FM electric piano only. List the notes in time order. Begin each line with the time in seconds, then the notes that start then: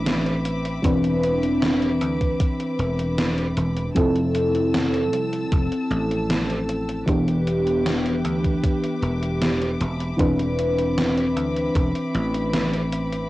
0.83 E3 C4 D4 B4
3.95 F3 C4 E4 A4
7.06 E3 B3 D4 G4
10.17 E3 C4 D4 B4